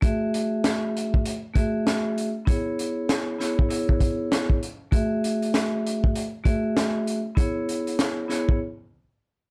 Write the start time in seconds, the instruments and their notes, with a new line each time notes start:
0.01 vibraphone A3 F#4 G#4 E5, kick, closed hi-hat
0.34 closed hi-hat
0.64 snare, closed hi-hat
0.97 closed hi-hat
1.14 kick
1.26 closed hi-hat
1.54 vibraphone A3 F#4 G#4 E5, kick, closed hi-hat
1.87 snare, closed hi-hat
2.18 closed hi-hat
2.46 vibraphone B3 E4 G#4 C#5, kick, closed hi-hat
2.79 closed hi-hat
3.09 snare, closed hi-hat
3.39 vibraphone B3 E4 G#4 C#5, snare, closed hi-hat
3.59 kick
3.69 vibraphone B3 E4 G#4 C#5, closed hi-hat
3.89 kick
4.00 kick, closed hi-hat
4.32 snare, closed hi-hat
4.50 kick
4.63 closed hi-hat
4.91 vibraphone A3 F#4 G#4 E5, kick, closed hi-hat
5.24 closed hi-hat
5.42 closed hi-hat
5.54 snare, closed hi-hat
5.87 closed hi-hat
6.04 kick
6.16 closed hi-hat
6.44 vibraphone A3 F#4 G#4 E5, kick, closed hi-hat
6.77 snare, closed hi-hat
7.07 closed hi-hat
7.35 vibraphone B3 E4 G#4 C#5, kick, closed hi-hat
7.69 closed hi-hat
7.87 closed hi-hat
7.99 snare, closed hi-hat
8.28 vibraphone B3 E4 G#4 C#5, snare, closed hi-hat
8.49 kick